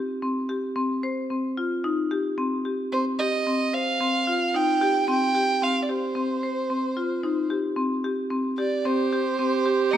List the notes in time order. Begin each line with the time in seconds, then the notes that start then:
Already playing: G4
0.23 C4
0.49 G4
0.76 C4
1.03 C5
1.30 C4
1.57 F4
1.84 D#4
2.11 G4
2.38 C4
2.65 G4
2.92 C4 C5
3.19 G4 D#5
3.47 C4
3.73 C5 F5
4.00 C4
4.27 F4
4.54 D#4 G5
4.81 G4
5.08 C4 G5
5.35 G4
5.62 C4 F5
5.83 D5
5.89 G4 C5
6.15 C4
6.43 C5
6.70 C4
6.97 F4
7.23 D#4
7.50 G4
7.76 C4
8.04 G4
8.31 C4
8.58 G4 D5
8.84 C4 G4 C5
9.13 G4
9.39 C4
9.66 G4
9.91 A#3 D#5